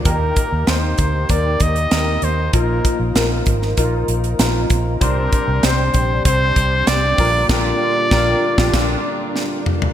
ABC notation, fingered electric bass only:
X:1
M:4/4
L:1/16
Q:1/4=97
K:Eb
V:1 name="Fingered electric bass" clef=bass
E,,2 z E,, E,,2 D,,2 E,,2 E,,2 E,,2 E,,2 | B,,,2 z B,,, B,,,2 A,,,2 B,,,2 B,,,2 B,,,2 B,,,2 | C,,2 z C,, C,,2 B,,,2 C,,2 C,,2 C,,2 B,,,2 | B,,,2 z2 B,,,2 z B,,, B,,,2 z6 |]